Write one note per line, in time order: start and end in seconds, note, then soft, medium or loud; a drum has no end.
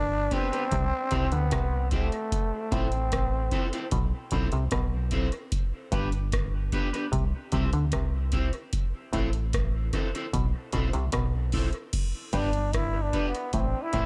0.00 0.28 G1 medium
0.00 0.34 D4 loud
0.31 0.46 B3 medium
0.31 1.34 C4 loud
0.31 0.46 D4 medium
0.31 0.46 G4 medium
0.31 0.46 B4 loud
0.31 kick medium
0.31 closed hi-hat medium
0.52 0.63 B3 medium
0.52 0.63 D4 medium
0.52 0.63 G4 medium
0.52 0.63 B4 medium
0.52 closed hi-hat medium
0.72 0.91 C2 medium
0.72 0.84 C3 medium
0.72 kick loud
0.72 closed hi-hat medium
1.11 1.31 C2 medium
1.11 1.24 C3 medium
1.11 1.26 C4 medium
1.11 1.26 E4 medium
1.11 1.26 G4 medium
1.11 1.26 C5 loud
1.11 kick medium
1.11 closed hi-hat medium
1.32 1.51 D2 medium
1.32 1.44 D3 medium
1.32 1.92 B3 medium
1.32 closed hi-hat medium
1.51 2.09 C2 medium
1.51 1.76 C3 medium
1.51 kick loud
1.51 cross-stick loud
1.51 closed hi-hat loud
1.91 2.75 A3 loud
1.91 2.06 C4 medium
1.91 2.06 E4 medium
1.91 2.07 G4 medium
1.91 2.07 C5 medium
1.91 kick loud
1.91 closed hi-hat medium
2.12 closed hi-hat soft
2.32 kick loud
2.32 closed hi-hat loud
2.71 3.48 A1 medium
2.71 2.96 A2 medium
2.71 2.86 C4 medium
2.71 3.93 C4 medium
2.71 2.86 E4 medium
2.71 2.87 A4 medium
2.71 2.87 C5 medium
2.71 kick loud
2.71 closed hi-hat medium
2.92 closed hi-hat soft
3.12 kick loud
3.12 cross-stick loud
3.12 closed hi-hat medium
3.51 3.66 C4 medium
3.51 3.67 E4 medium
3.51 3.67 A4 medium
3.51 3.67 C5 loud
3.51 kick medium
3.51 closed hi-hat medium
3.73 3.84 C4 medium
3.73 3.84 E4 medium
3.73 3.83 A4 medium
3.73 3.83 C5 medium
3.73 closed hi-hat medium
3.91 4.12 B1 medium
3.91 4.04 B2 medium
3.91 kick loud
3.91 closed hi-hat medium
4.31 4.51 B1 medium
4.31 4.44 B2 medium
4.31 4.47 C4 medium
4.31 4.47 E4 medium
4.31 4.47 A4 medium
4.31 4.47 C5 medium
4.31 kick medium
4.31 closed hi-hat medium
4.52 4.71 C2 medium
4.52 4.64 C3 medium
4.52 muted clean electric guitar stroke soft
4.52 closed hi-hat medium
4.71 5.29 B1 medium
4.71 4.96 B2 medium
4.71 kick loud
4.71 cross-stick loud
4.71 closed hi-hat loud
5.11 5.26 C4 medium
5.11 5.27 E4 medium
5.11 5.27 A4 medium
5.11 5.27 C5 loud
5.11 kick medium
5.11 closed hi-hat medium
5.32 closed hi-hat soft
5.52 kick loud
5.52 closed hi-hat loud
5.92 6.69 G1 medium
5.92 6.16 G2 medium
5.92 6.07 B3 medium
5.92 6.07 D4 medium
5.92 6.07 G4 medium
5.92 6.07 B4 medium
5.92 kick loud
5.92 closed hi-hat medium
6.12 closed hi-hat medium
6.32 kick loud
6.32 cross-stick loud
6.32 closed hi-hat medium
6.72 6.87 B3 medium
6.72 6.87 D4 medium
6.72 6.87 G4 loud
6.72 6.88 B4 loud
6.72 kick medium
6.72 closed hi-hat medium
6.93 7.04 B3 medium
6.93 7.04 D4 medium
6.93 7.04 G4 medium
6.93 7.04 B4 medium
6.93 closed hi-hat medium
7.12 7.32 C2 loud
7.12 7.25 C3 medium
7.12 kick loud
7.12 closed hi-hat medium
7.52 7.72 C2 medium
7.52 7.65 C3 medium
7.52 7.67 C4 medium
7.52 7.68 E4 medium
7.52 7.68 G4 medium
7.52 7.68 C5 medium
7.52 kick medium
7.52 closed hi-hat medium
7.73 7.91 D2 medium
7.73 7.85 D3 medium
7.73 closed hi-hat medium
7.92 8.49 C2 medium
7.92 8.17 C3 medium
7.92 kick loud
7.92 cross-stick loud
7.92 closed hi-hat loud
8.32 8.47 C4 medium
8.32 8.47 E4 medium
8.32 8.47 G4 medium
8.32 8.48 C5 medium
8.32 kick loud
8.32 closed hi-hat medium
8.53 closed hi-hat soft
8.73 kick loud
8.73 closed hi-hat loud
9.13 9.89 A1 medium
9.13 9.37 A2 medium
9.13 9.27 C4 medium
9.13 9.28 E4 medium
9.13 9.28 A4 medium
9.13 9.28 C5 medium
9.13 kick loud
9.13 closed hi-hat medium
9.33 closed hi-hat medium
9.53 kick loud
9.53 cross-stick loud
9.53 closed hi-hat medium
9.93 10.08 C4 medium
9.93 10.08 E4 medium
9.93 10.08 A4 medium
9.93 10.08 C5 medium
9.93 kick medium
9.93 cross-stick medium
9.93 closed hi-hat medium
10.15 10.25 C4 medium
10.15 10.25 E4 medium
10.15 10.25 A4 medium
10.15 10.25 C5 medium
10.15 closed hi-hat medium
10.33 10.53 B1 loud
10.33 10.46 B2 medium
10.33 kick loud
10.33 closed hi-hat medium
10.72 10.93 B1 medium
10.72 10.85 B2 medium
10.72 10.88 C4 medium
10.72 10.88 E4 medium
10.72 10.88 A4 medium
10.72 10.88 C5 medium
10.72 kick medium
10.72 closed hi-hat medium
10.93 11.12 C2 medium
10.93 11.05 C3 medium
10.93 muted clean electric guitar stroke medium
10.93 closed hi-hat medium
11.12 11.70 B1 medium
11.12 11.37 B2 medium
11.12 kick loud
11.12 cross-stick loud
11.12 closed hi-hat loud
11.52 11.68 C4 medium
11.52 11.68 E4 medium
11.52 11.68 A4 medium
11.52 11.68 C5 medium
11.52 kick medium
11.52 open hi-hat medium
11.73 closed hi-hat soft
11.93 kick loud
11.93 closed hi-hat loud
11.93 crash medium
12.33 13.10 G1 loud
12.33 12.57 G2 medium
12.33 12.48 B3 medium
12.33 12.48 D4 medium
12.33 12.76 D4 loud
12.33 12.48 G4 medium
12.33 12.48 B4 medium
12.33 kick loud
12.33 closed hi-hat medium
12.53 closed hi-hat medium
12.73 13.04 E4 loud
12.73 kick loud
12.73 cross-stick loud
12.73 closed hi-hat medium
12.94 muted clean electric guitar stroke medium
13.02 13.28 D4 medium
13.13 13.28 B3 medium
13.13 13.28 D4 medium
13.13 13.28 G4 loud
13.13 13.28 B4 loud
13.13 kick medium
13.13 closed hi-hat medium
13.29 13.53 B3 medium
13.35 closed hi-hat medium
13.53 13.73 A1 medium
13.53 13.66 A2 medium
13.53 13.84 C4 medium
13.53 kick loud
13.53 closed hi-hat medium
13.82 14.06 E4 loud
13.93 14.06 A1 medium
13.93 14.06 A2 medium
13.93 14.06 C4 medium
13.93 14.06 E4 medium
13.93 14.06 A4 medium
13.93 14.06 C5 medium
13.93 kick medium
13.93 closed hi-hat medium